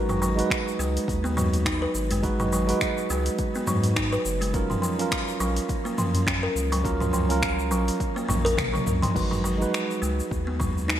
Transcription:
Already playing: G#1 G#3 D#4 F#4 B4
0.09 F#3, mid tom, shaker
0.22 F#3, shaker
0.35 G#3 D#4 F#4, open hi-hat, shaker
0.40 B4
0.50 finger snap, kick, open hi-hat, shaker
0.68 shaker
0.79 C#2 G#3, shaker
0.97 open hi-hat, shaker
1.08 D#2, kick, open hi-hat, shaker
1.24 B3, shaker
1.37 F#3, mid tom, shaker
1.53 open hi-hat, shaker
1.66 D#4, finger snap, kick, open hi-hat, shaker
1.82 B4
1.95 G#1, shaker
2.11 G#3, open hi-hat, udu, shaker
2.22 G#3 D#4 F#4 B4, kick, open hi-hat, shaker
2.40 F#3, mid tom, shaker
2.52 F#3, shaker
2.67 G#3 D#4 F#4 B4, open hi-hat, shaker
2.81 finger snap, kick, open hi-hat, shaker
2.98 shaker
3.10 C#2 G#3, shaker
3.26 open hi-hat, shaker
3.39 kick, open hi-hat, shaker
3.55 B3, shaker
3.67 G#2 F#3, mid tom, udu, shaker
3.83 open hi-hat, shaker
3.96 D#4, finger snap, kick, open hi-hat, shaker
4.12 B4, shaker
4.25 F#1, shaker
4.41 G#3, open hi-hat, shaker
4.54 F#3 C#4 F4 A#4, kick, open hi-hat, shaker
4.70 F3, mid tom, shaker
4.82 F3, shaker
4.99 C#4 F4 A#4, open hi-hat, shaker
5.12 finger snap, kick, open hi-hat, shaker
5.28 shaker
5.40 A#1 F#3, shaker
5.56 open hi-hat, shaker
5.69 kick, open hi-hat, shaker
5.85 A#3, shaker
5.98 F3, mid tom, shaker
6.14 F#2, open hi-hat, shaker
6.27 C#4, finger snap, kick, open hi-hat, shaker
6.43 A#4
6.55 C#2, shaker
6.71 F#3, open hi-hat, udu, shaker
6.83 F#3 C#4 F4 A#4, kick, open hi-hat, shaker
7.00 F3, mid tom, shaker
7.13 F3, udu, shaker
7.29 C#4 F4 A#4, open hi-hat, shaker
7.42 finger snap, kick, open hi-hat, shaker
7.59 shaker
7.71 A#1 F#3, shaker
7.88 open hi-hat, shaker
8.00 kick, open hi-hat, shaker
8.16 A#3, shaker
8.28 A#1 F#3, mid tom, high tom, udu, shaker
8.45 A#4, open hi-hat, shaker
8.57 A#3, finger snap, kick, open hi-hat, mid tom, shaker
8.74 F#3, mid tom, shaker
8.87 C#2, mid tom, shaker
9.02 F3, mid tom, open hi-hat, shaker
9.14 G#1 G#3 D#4 F#4 B4, kick, crash, shaker
9.31 F#3, mid tom, shaker
9.44 F#3, shaker
9.58 G#3 D#4 F#4
9.62 B4, shaker
9.74 finger snap, shaker
9.91 shaker
10.02 C#2 G#3, shaker
10.20 shaker
10.31 D#2, kick, shaker
10.47 B3
10.60 F#3, kick, mid tom, shaker
10.78 shaker
10.88 D#4, finger snap, shaker

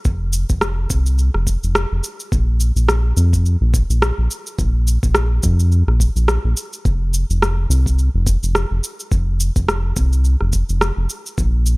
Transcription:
0.05 F1, kick, shaker
0.33 shaker
0.49 F1, kick, shaker
0.61 cross-stick, shaker
0.90 C2, kick, shaker
1.06 shaker
1.18 shaker
1.34 F1, cross-stick
1.47 kick, shaker
1.63 F1, shaker
1.75 cross-stick, shaker
1.92 F1
2.04 shaker
2.20 shaker
2.32 A#1, kick, shaker
2.60 shaker
2.76 A#1, shaker
2.89 cross-stick, shaker
3.17 F2, shaker
3.33 kick, shaker
3.46 shaker
3.61 A#1
3.74 kick, shaker
3.90 A#1, shaker
4.02 cross-stick, shaker
4.18 A#1
4.31 shaker
4.47 shaker
4.58 A#1, kick, shaker
4.87 shaker
5.03 A#1, kick, shaker
5.15 cross-stick, shaker
5.43 F2, kick, shaker
5.60 shaker
5.72 shaker
5.87 A#1, cross-stick
6.00 kick, shaker
6.16 A#1, shaker
6.28 cross-stick, shaker
6.44 A#1
6.57 shaker
6.73 shaker
6.85 F1, kick, shaker
7.14 shaker
7.30 F1, shaker
7.42 cross-stick, shaker
7.69 C2, shaker
7.86 kick, shaker
7.99 shaker
8.14 F1
8.27 kick, shaker
8.43 F1, shaker
8.55 cross-stick, shaker
8.71 F1
8.84 shaker
9.00 shaker
9.11 F1, kick, shaker
9.40 shaker
9.56 F1, kick, shaker
9.69 cross-stick, shaker
9.96 C2, kick, shaker
10.13 shaker
10.25 shaker
10.41 F1, cross-stick
10.53 kick, shaker
10.69 F1, shaker
10.81 cross-stick, shaker
10.97 F1
11.10 shaker
11.26 shaker
11.38 A#1, kick, shaker
11.66 shaker

